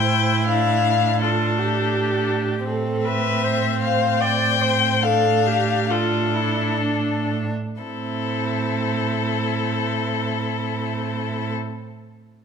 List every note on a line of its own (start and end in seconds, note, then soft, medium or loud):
0.00 2.63 A2 soft
0.00 1.23 E4 soft
0.00 0.43 C5 soft
0.00 0.47 G5 medium
0.48 1.20 D4 soft
0.48 1.20 F5 medium
1.21 2.64 D4 soft
1.21 1.60 F4 soft
1.21 2.30 A4 soft
1.58 2.67 G4 soft
2.68 7.52 A2 soft
2.68 4.99 C4 soft
2.68 3.07 A4 soft
3.05 3.45 B4 soft
3.05 3.78 E5 medium
3.44 4.22 C5 soft
3.82 4.23 F5 medium
4.21 4.63 D5 soft
4.21 5.04 G5 medium
4.61 5.05 C5 soft
5.03 5.88 D4 soft
5.03 5.48 A4 soft
5.03 5.92 F5 medium
5.47 5.91 G4 soft
5.90 7.53 D4 soft
5.90 6.36 F4 soft
5.90 7.32 A4 medium
6.35 6.80 E4 soft
6.81 7.30 D4 soft
7.81 11.53 A2 soft
7.81 11.53 C4 soft
7.81 11.53 E4 soft
7.81 11.54 A4 soft